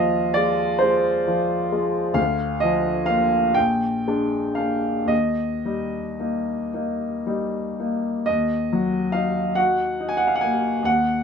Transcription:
Already playing: D#2 F3 F4 D#5 F5
0.34 G#3 F4 D5
0.79 G#3 F4 C5
1.27 F3 F4
1.72 G#3 F4
2.14 D2 F5
2.60 F3 F4 D#5
3.06 A#3 F4 F5
3.54 A#1 G5
4.08 G#3 D4
4.55 A#3 D4 F5
5.05 D#2 D#5
5.65 G3 D#4
6.20 A#3 D#4
6.74 A#3 D#4
7.26 G3 D#4
7.80 A#3 D#4
8.26 D#2 D#5
8.73 F#3
9.12 D#4 F5
9.55 F#4 F#5
10.00 D#4
10.09 G#5
10.17 F#5
10.27 F5
10.35 F#5
10.41 A#3 G#5
10.83 D#2 F#5

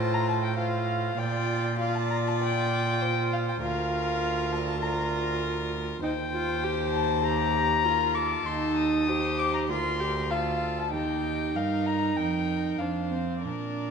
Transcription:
Already playing: A2 F4 C5 A5
0.14 A#5
0.29 A5
0.44 G5
0.57 F4 C5 F5
1.18 A#2 F4 D5 G5
1.79 F4 D5 F5
1.95 A5
2.11 A#5
2.27 A5
2.42 G5
3.01 C5
3.33 F5
3.49 G5
3.62 D2 F4 A#4 F5
4.52 A5
4.80 F4 A#4 A#5
6.02 D#2 D#4 C5 G5
6.32 F4
6.63 G4
6.94 A5
7.24 G4 A#5
7.84 F4 A#4
8.15 A4 D6
8.46 D#2 D#4 C6
8.77 D#6
9.08 G4 C5
9.39 D6
9.54 A#5
9.69 D2 F4 A#4 C6
10.00 G4
10.31 F4 A4 F5
10.79 A5
10.93 D#2 D#4 G4 G5
11.55 G2 A#4 F5
11.86 A#5
12.17 F2 A#4 G5
12.79 F2 D4 C5 F5
13.11 C4
13.42 A#2 D4 A#4 D5

